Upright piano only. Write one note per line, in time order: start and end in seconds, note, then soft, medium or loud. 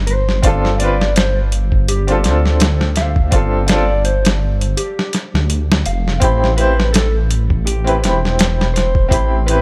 0.42 0.74 C4 medium
0.42 0.75 D4 medium
0.42 0.76 F4 medium
0.47 0.77 A4 loud
0.78 1.00 C4 medium
0.78 1.01 D4 medium
0.78 1.02 F4 medium
0.83 1.03 B4 loud
2.07 2.18 C4 medium
2.07 2.21 D4 medium
2.07 2.23 F4 medium
2.12 2.24 A4 medium
2.23 3.28 D4 medium
2.23 3.30 F4 medium
2.29 3.32 A4 medium
3.31 3.64 C4 medium
3.31 3.65 D4 medium
3.31 3.66 F4 medium
3.36 3.67 A4 medium
3.66 3.89 C4 medium
3.66 3.90 D4 medium
3.66 3.91 F4 medium
3.71 3.91 A4 medium
6.20 6.52 C4 medium
6.20 6.53 E4 medium
6.20 6.54 G4 medium
6.25 6.55 B5 medium
6.56 6.78 C4 medium
6.56 6.79 E4 medium
6.56 6.80 G4 medium
6.61 6.81 C5 loud
7.84 7.97 C4 medium
7.84 8.00 E4 medium
7.84 8.01 G4 medium
7.89 8.02 B4 medium
7.98 9.05 C4 medium
7.98 9.07 E4 medium
8.05 9.09 G4 medium
8.05 9.10 B5 medium
9.09 9.42 C4 medium
9.09 9.43 E4 medium
9.09 9.44 G4 medium
9.14 9.45 B5 medium
9.46 9.62 C4 medium
9.46 9.62 E4 medium
9.46 9.62 G4 medium
9.51 9.62 B4 medium